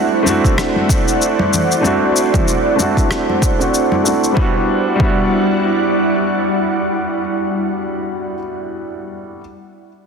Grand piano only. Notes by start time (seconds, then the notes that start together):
Already playing: A3 C4 D4 E4 F#4
0.23 A3 C4 D4
0.27 E4 F#4
1.81 A3 C4 D4
1.86 E4 F#4
2.76 A3 C4 D4
2.80 E4 F#4
3.59 A3 C4 D4 E4 F#4
4.03 A3 C4 D4 E4 F#4
4.32 G3 B3
4.37 D4 E4
4.41 F#4
4.96 G3 B3
5.00 D4 E4
5.05 F#4